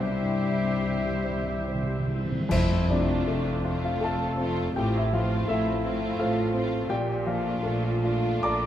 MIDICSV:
0, 0, Header, 1, 14, 480
1, 0, Start_track
1, 0, Key_signature, -1, "major"
1, 0, Tempo, 859599
1, 9, Time_signature, 3, 2, 24, 8
1, 489, Tempo, 823045
1, 1449, Tempo, 772201
1, 1929, Tempo, 735294
1, 2889, Tempo, 714286
1, 4809, Tempo, 791557
1, 5440, End_track
2, 0, Start_track
2, 0, Title_t, "Flute"
2, 0, Program_c, 0, 73
2, 5, Note_on_c, 0, 76, 51
2, 1247, Note_off_c, 0, 76, 0
2, 5440, End_track
3, 0, Start_track
3, 0, Title_t, "French horn section"
3, 0, Program_c, 1, 60
3, 0, Note_on_c, 1, 72, 40
3, 0, Note_on_c, 1, 76, 40
3, 1217, Note_off_c, 1, 76, 0
3, 1218, Note_off_c, 1, 72, 0
3, 5440, End_track
4, 0, Start_track
4, 0, Title_t, "Clarinet"
4, 0, Program_c, 2, 71
4, 5, Note_on_c, 2, 72, 51
4, 1224, Note_off_c, 2, 72, 0
4, 5440, End_track
5, 0, Start_track
5, 0, Title_t, "Grand piano"
5, 0, Program_c, 3, 0
5, 0, Control_c, 3, 64, 127
5, 0, Note_on_c, 3, 36, 50
5, 22, Control_c, 3, 64, 0
5, 124, Control_c, 3, 64, 127
5, 125, Note_on_c, 3, 43, 42
5, 240, Note_on_c, 3, 55, 42
5, 321, Note_off_c, 3, 43, 0
5, 356, Note_on_c, 3, 60, 40
5, 436, Note_off_c, 3, 55, 0
5, 473, Note_on_c, 3, 64, 46
5, 554, Note_off_c, 3, 60, 0
5, 593, Note_on_c, 3, 67, 42
5, 674, Note_off_c, 3, 64, 0
5, 702, Note_on_c, 3, 72, 41
5, 793, Note_off_c, 3, 67, 0
5, 836, Note_on_c, 3, 76, 49
5, 907, Note_off_c, 3, 72, 0
5, 958, Note_on_c, 3, 72, 42
5, 1033, Note_off_c, 3, 76, 0
5, 1069, Note_on_c, 3, 67, 38
5, 1156, Note_off_c, 3, 72, 0
5, 1194, Note_on_c, 3, 64, 41
5, 1274, Note_off_c, 3, 67, 0
5, 1326, Note_on_c, 3, 60, 37
5, 1394, Note_off_c, 3, 64, 0
5, 1418, Note_off_c, 3, 36, 0
5, 1431, Note_on_c, 3, 41, 80
5, 1445, Note_on_c, 3, 76, 84
5, 1446, Note_off_c, 3, 60, 0
5, 1448, Note_on_c, 3, 72, 70
5, 1453, Note_on_c, 3, 64, 66
5, 1461, Control_c, 3, 64, 0
5, 1555, Control_c, 3, 64, 127
5, 1673, Note_off_c, 3, 76, 0
5, 1674, Note_off_c, 3, 72, 0
5, 1677, Note_off_c, 3, 64, 0
5, 1684, Note_on_c, 3, 74, 65
5, 1685, Note_on_c, 3, 48, 60
5, 1693, Note_on_c, 3, 62, 49
5, 1918, Note_on_c, 3, 57, 62
5, 2072, Note_off_c, 3, 48, 0
5, 2160, Note_on_c, 3, 65, 61
5, 2261, Note_off_c, 3, 74, 0
5, 2265, Note_off_c, 3, 62, 0
5, 2289, Note_off_c, 3, 65, 0
5, 2290, Note_on_c, 3, 77, 66
5, 2299, Note_on_c, 3, 65, 51
5, 2309, Note_off_c, 3, 57, 0
5, 2397, Note_on_c, 3, 69, 66
5, 2401, Note_off_c, 3, 77, 0
5, 2406, Note_off_c, 3, 65, 0
5, 2413, Note_off_c, 3, 69, 0
5, 2415, Note_on_c, 3, 81, 85
5, 2423, Note_on_c, 3, 69, 63
5, 2425, Note_on_c, 3, 77, 66
5, 2634, Note_on_c, 3, 60, 59
5, 2853, Note_off_c, 3, 41, 0
5, 2865, Note_off_c, 3, 81, 0
5, 2869, Note_off_c, 3, 69, 0
5, 2870, Note_off_c, 3, 77, 0
5, 2881, Note_off_c, 3, 60, 0
5, 2887, Note_on_c, 3, 79, 79
5, 2890, Note_on_c, 3, 45, 68
5, 2893, Note_on_c, 3, 67, 65
5, 2901, Control_c, 3, 64, 0
5, 2995, Control_c, 3, 64, 127
5, 3002, Note_off_c, 3, 79, 0
5, 3005, Note_off_c, 3, 67, 0
5, 3031, Note_on_c, 3, 76, 69
5, 3040, Note_on_c, 3, 64, 54
5, 3130, Note_on_c, 3, 53, 58
5, 3135, Note_off_c, 3, 76, 0
5, 3138, Note_on_c, 3, 77, 73
5, 3140, Note_off_c, 3, 64, 0
5, 3148, Note_on_c, 3, 65, 65
5, 3359, Note_off_c, 3, 77, 0
5, 3364, Note_off_c, 3, 65, 0
5, 3370, Note_on_c, 3, 57, 61
5, 3377, Note_on_c, 3, 76, 78
5, 3384, Note_on_c, 3, 64, 65
5, 3514, Note_off_c, 3, 53, 0
5, 3622, Note_on_c, 3, 65, 54
5, 3751, Note_off_c, 3, 57, 0
5, 3822, Note_off_c, 3, 76, 0
5, 3825, Note_off_c, 3, 64, 0
5, 3848, Note_on_c, 3, 77, 74
5, 3849, Note_off_c, 3, 65, 0
5, 3849, Note_on_c, 3, 69, 64
5, 3858, Note_on_c, 3, 72, 58
5, 3859, Note_on_c, 3, 65, 59
5, 4080, Note_on_c, 3, 60, 59
5, 4227, Note_off_c, 3, 69, 0
5, 4295, Note_off_c, 3, 45, 0
5, 4295, Note_off_c, 3, 77, 0
5, 4300, Note_off_c, 3, 72, 0
5, 4301, Note_off_c, 3, 65, 0
5, 4319, Note_on_c, 3, 46, 69
5, 4320, Note_off_c, 3, 60, 0
5, 4323, Note_on_c, 3, 79, 88
5, 4327, Note_on_c, 3, 67, 63
5, 4332, Note_on_c, 3, 74, 65
5, 4333, Control_c, 3, 64, 0
5, 4453, Control_c, 3, 64, 127
5, 4546, Note_off_c, 3, 79, 0
5, 4548, Note_off_c, 3, 67, 0
5, 4551, Note_off_c, 3, 74, 0
5, 4568, Note_on_c, 3, 53, 58
5, 4573, Note_on_c, 3, 77, 67
5, 4574, Note_on_c, 3, 74, 54
5, 4578, Note_on_c, 3, 65, 48
5, 4813, Note_on_c, 3, 57, 57
5, 4951, Note_off_c, 3, 53, 0
5, 5055, Note_off_c, 3, 65, 0
5, 5064, Note_on_c, 3, 65, 57
5, 5200, Note_off_c, 3, 57, 0
5, 5275, Note_off_c, 3, 74, 0
5, 5275, Note_off_c, 3, 77, 0
5, 5299, Note_on_c, 3, 86, 93
5, 5304, Note_on_c, 3, 82, 64
5, 5306, Note_on_c, 3, 74, 68
5, 5312, Note_on_c, 3, 69, 56
5, 5440, Note_off_c, 3, 46, 0
5, 5440, Note_off_c, 3, 65, 0
5, 5440, Note_off_c, 3, 69, 0
5, 5440, Note_off_c, 3, 74, 0
5, 5440, Note_off_c, 3, 82, 0
5, 5440, Note_off_c, 3, 86, 0
5, 5440, End_track
6, 0, Start_track
6, 0, Title_t, "Oboe"
6, 0, Program_c, 4, 68
6, 4, Note_on_c, 4, 67, 52
6, 1185, Note_off_c, 4, 67, 0
6, 5440, End_track
7, 0, Start_track
7, 0, Title_t, "Viola section"
7, 0, Program_c, 5, 48
7, 14, Note_on_c, 5, 72, 39
7, 16, Note_on_c, 5, 76, 44
7, 1304, Note_off_c, 5, 72, 0
7, 1305, Note_off_c, 5, 76, 0
7, 1447, Note_on_c, 5, 64, 72
7, 1674, Note_off_c, 5, 64, 0
7, 1693, Note_on_c, 5, 62, 67
7, 2285, Note_on_c, 5, 65, 66
7, 2292, Note_off_c, 5, 62, 0
7, 2402, Note_on_c, 5, 69, 66
7, 2405, Note_off_c, 5, 65, 0
7, 2880, Note_on_c, 5, 67, 72
7, 2885, Note_off_c, 5, 69, 0
7, 3005, Note_off_c, 5, 67, 0
7, 3008, Note_on_c, 5, 64, 65
7, 3129, Note_off_c, 5, 64, 0
7, 3131, Note_on_c, 5, 65, 74
7, 3372, Note_off_c, 5, 65, 0
7, 3372, Note_on_c, 5, 64, 64
7, 3846, Note_off_c, 5, 64, 0
7, 3850, Note_on_c, 5, 65, 68
7, 4323, Note_off_c, 5, 65, 0
7, 4328, Note_on_c, 5, 67, 63
7, 4565, Note_off_c, 5, 67, 0
7, 4575, Note_on_c, 5, 65, 57
7, 5300, Note_off_c, 5, 65, 0
7, 5306, Note_on_c, 5, 74, 69
7, 5440, Note_off_c, 5, 74, 0
7, 5440, End_track
8, 0, Start_track
8, 0, Title_t, "Violin section"
8, 0, Program_c, 6, 48
8, 4, Note_on_c, 6, 64, 49
8, 1184, Note_off_c, 6, 64, 0
8, 1681, Note_on_c, 6, 65, 55
8, 2155, Note_off_c, 6, 65, 0
8, 2177, Note_on_c, 6, 65, 54
8, 2642, Note_off_c, 6, 65, 0
8, 2656, Note_on_c, 6, 65, 59
8, 2881, Note_off_c, 6, 65, 0
8, 2889, Note_on_c, 6, 65, 52
8, 3128, Note_off_c, 6, 65, 0
8, 3144, Note_on_c, 6, 65, 56
8, 3606, Note_off_c, 6, 65, 0
8, 3626, Note_on_c, 6, 65, 60
8, 4082, Note_off_c, 6, 65, 0
8, 4109, Note_on_c, 6, 65, 56
8, 4330, Note_off_c, 6, 65, 0
8, 4578, Note_on_c, 6, 65, 53
8, 5044, Note_off_c, 6, 65, 0
8, 5051, Note_on_c, 6, 65, 56
8, 5440, Note_off_c, 6, 65, 0
8, 5440, End_track
9, 0, Start_track
9, 0, Title_t, "Violin section"
9, 0, Program_c, 7, 48
9, 1, Note_on_c, 7, 67, 62
9, 1183, Note_off_c, 7, 67, 0
9, 1683, Note_on_c, 7, 60, 55
9, 1684, Note_on_c, 7, 57, 59
9, 2153, Note_off_c, 7, 57, 0
9, 2157, Note_off_c, 7, 60, 0
9, 2161, Note_on_c, 7, 57, 57
9, 2166, Note_on_c, 7, 60, 60
9, 2634, Note_off_c, 7, 57, 0
9, 2636, Note_off_c, 7, 60, 0
9, 2649, Note_on_c, 7, 57, 53
9, 2651, Note_on_c, 7, 60, 58
9, 2874, Note_off_c, 7, 60, 0
9, 2875, Note_off_c, 7, 57, 0
9, 2882, Note_on_c, 7, 60, 56
9, 2883, Note_on_c, 7, 57, 55
9, 3122, Note_off_c, 7, 60, 0
9, 3123, Note_off_c, 7, 57, 0
9, 3130, Note_on_c, 7, 60, 59
9, 3131, Note_on_c, 7, 57, 60
9, 3591, Note_off_c, 7, 57, 0
9, 3592, Note_off_c, 7, 60, 0
9, 3599, Note_on_c, 7, 57, 56
9, 3600, Note_on_c, 7, 60, 64
9, 4069, Note_off_c, 7, 57, 0
9, 4069, Note_off_c, 7, 60, 0
9, 4077, Note_on_c, 7, 60, 49
9, 4078, Note_on_c, 7, 57, 53
9, 4314, Note_off_c, 7, 57, 0
9, 4314, Note_off_c, 7, 60, 0
9, 4553, Note_on_c, 7, 62, 53
9, 4554, Note_on_c, 7, 57, 54
9, 5035, Note_off_c, 7, 57, 0
9, 5035, Note_off_c, 7, 62, 0
9, 5043, Note_on_c, 7, 57, 56
9, 5047, Note_on_c, 7, 62, 60
9, 5440, Note_off_c, 7, 57, 0
9, 5440, Note_off_c, 7, 62, 0
9, 5440, End_track
10, 0, Start_track
10, 0, Title_t, "Bassoon"
10, 0, Program_c, 8, 70
10, 1, Note_on_c, 8, 55, 52
10, 1245, Note_off_c, 8, 55, 0
10, 5440, End_track
11, 0, Start_track
11, 0, Title_t, "Timpani"
11, 0, Program_c, 10, 47
11, 52, Note_on_c, 10, 48, 34
11, 100, Note_off_c, 10, 48, 0
11, 201, Note_on_c, 10, 48, 28
11, 241, Note_off_c, 10, 48, 0
11, 247, Note_on_c, 10, 48, 32
11, 287, Note_off_c, 10, 48, 0
11, 345, Note_on_c, 10, 48, 38
11, 388, Note_off_c, 10, 48, 0
11, 398, Note_on_c, 10, 48, 36
11, 434, Note_off_c, 10, 48, 0
11, 441, Note_on_c, 10, 48, 44
11, 478, Note_off_c, 10, 48, 0
11, 484, Note_on_c, 10, 48, 43
11, 524, Note_off_c, 10, 48, 0
11, 531, Note_on_c, 10, 48, 41
11, 574, Note_off_c, 10, 48, 0
11, 581, Note_on_c, 10, 48, 41
11, 620, Note_off_c, 10, 48, 0
11, 627, Note_on_c, 10, 48, 42
11, 668, Note_off_c, 10, 48, 0
11, 675, Note_on_c, 10, 48, 47
11, 719, Note_off_c, 10, 48, 0
11, 725, Note_on_c, 10, 48, 47
11, 763, Note_off_c, 10, 48, 0
11, 770, Note_on_c, 10, 48, 51
11, 805, Note_off_c, 10, 48, 0
11, 812, Note_on_c, 10, 48, 53
11, 850, Note_off_c, 10, 48, 0
11, 857, Note_on_c, 10, 48, 51
11, 892, Note_off_c, 10, 48, 0
11, 899, Note_on_c, 10, 48, 60
11, 944, Note_off_c, 10, 48, 0
11, 951, Note_on_c, 10, 48, 62
11, 994, Note_off_c, 10, 48, 0
11, 1001, Note_on_c, 10, 48, 65
11, 1038, Note_off_c, 10, 48, 0
11, 1045, Note_on_c, 10, 48, 67
11, 1086, Note_off_c, 10, 48, 0
11, 1093, Note_on_c, 10, 48, 68
11, 1136, Note_off_c, 10, 48, 0
11, 1143, Note_on_c, 10, 48, 69
11, 1182, Note_off_c, 10, 48, 0
11, 1189, Note_on_c, 10, 48, 64
11, 1229, Note_off_c, 10, 48, 0
11, 1236, Note_on_c, 10, 48, 74
11, 1281, Note_off_c, 10, 48, 0
11, 1288, Note_on_c, 10, 48, 78
11, 1325, Note_off_c, 10, 48, 0
11, 1332, Note_on_c, 10, 48, 84
11, 1372, Note_off_c, 10, 48, 0
11, 1379, Note_on_c, 10, 48, 88
11, 1425, Note_off_c, 10, 48, 0
11, 1445, Note_on_c, 10, 41, 90
11, 2143, Note_off_c, 10, 41, 0
11, 5440, End_track
12, 0, Start_track
12, 0, Title_t, "Cello section"
12, 0, Program_c, 11, 48
12, 0, Note_on_c, 11, 55, 60
12, 1203, Note_off_c, 11, 55, 0
12, 1444, Note_on_c, 11, 41, 77
12, 1870, Note_off_c, 11, 41, 0
12, 1926, Note_on_c, 11, 41, 74
12, 2352, Note_off_c, 11, 41, 0
12, 2399, Note_on_c, 11, 41, 67
12, 2827, Note_off_c, 11, 41, 0
12, 2875, Note_on_c, 11, 45, 62
12, 3309, Note_off_c, 11, 45, 0
12, 3364, Note_on_c, 11, 45, 62
12, 3786, Note_off_c, 11, 45, 0
12, 3839, Note_on_c, 11, 45, 75
12, 4261, Note_off_c, 11, 45, 0
12, 4317, Note_on_c, 11, 46, 76
12, 4747, Note_off_c, 11, 46, 0
12, 4801, Note_on_c, 11, 46, 70
12, 5234, Note_off_c, 11, 46, 0
12, 5296, Note_on_c, 11, 46, 69
12, 5440, Note_off_c, 11, 46, 0
12, 5440, End_track
13, 0, Start_track
13, 0, Title_t, "Double bass section"
13, 0, Program_c, 12, 48
13, 3, Note_on_c, 12, 36, 55
13, 1299, Note_off_c, 12, 36, 0
13, 1448, Note_on_c, 12, 29, 84
13, 1873, Note_off_c, 12, 29, 0
13, 1930, Note_on_c, 12, 29, 64
13, 2354, Note_off_c, 12, 29, 0
13, 2408, Note_on_c, 12, 29, 62
13, 2831, Note_off_c, 12, 29, 0
13, 2894, Note_on_c, 12, 33, 76
13, 3319, Note_off_c, 12, 33, 0
13, 3378, Note_on_c, 12, 33, 73
13, 3793, Note_off_c, 12, 33, 0
13, 3852, Note_on_c, 12, 33, 60
13, 4268, Note_off_c, 12, 33, 0
13, 4323, Note_on_c, 12, 34, 77
13, 4750, Note_off_c, 12, 34, 0
13, 4808, Note_on_c, 12, 34, 69
13, 5237, Note_off_c, 12, 34, 0
13, 5300, Note_on_c, 12, 34, 59
13, 5440, Note_off_c, 12, 34, 0
13, 5440, End_track
14, 0, Start_track
14, 0, Title_t, "Drums"
14, 1442, Note_on_c, 9, 35, 78
14, 1442, Note_on_c, 9, 49, 73
14, 1504, Note_off_c, 9, 35, 0
14, 1504, Note_off_c, 9, 49, 0
14, 5440, End_track
0, 0, End_of_file